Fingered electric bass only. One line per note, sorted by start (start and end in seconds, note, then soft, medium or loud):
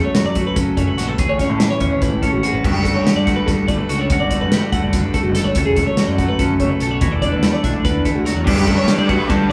0.25 0.45 F#3 medium
0.56 0.76 F#3 loud
0.77 0.87 F#2 medium
0.99 1.18 A#1 medium
1.19 1.28 A1 loud
1.29 1.50 A1 medium
1.50 1.69 A2 medium
1.80 1.91 E2 loud
1.91 2.11 G#1 medium
2.11 2.22 A2 medium
2.32 2.52 G#1 medium
2.53 2.63 G#1 medium
2.64 2.73 G1 medium
2.74 2.94 F#1 medium
3.15 3.35 G2 medium
3.48 3.67 G2 medium
3.68 3.78 G1 medium
3.88 4.18 C#2 medium
4.20 4.43 G1 medium
4.41 4.61 G2 medium
4.72 4.81 D2 medium
4.82 5.02 F#1 medium
5.03 5.13 G2 medium
5.24 5.44 F#1 medium
5.44 5.54 G1 medium
5.55 5.65 F#1 medium
5.66 5.85 E1 medium
6.07 6.27 F#2 medium
6.39 6.58 F#2 medium
6.59 6.69 F#1 medium
6.81 7.00 B1 medium
7.01 7.11 E1 medium
7.12 7.34 E1 medium
7.33 7.52 E2 medium
7.64 7.73 B1 medium
7.74 7.93 D2 medium
7.94 8.04 E2 medium
8.15 8.34 D2 medium
8.35 8.45 E2 medium
8.47 8.56 G2 medium
8.56 8.76 F#2 medium
8.98 9.18 G3 medium
9.30 9.49 G3 medium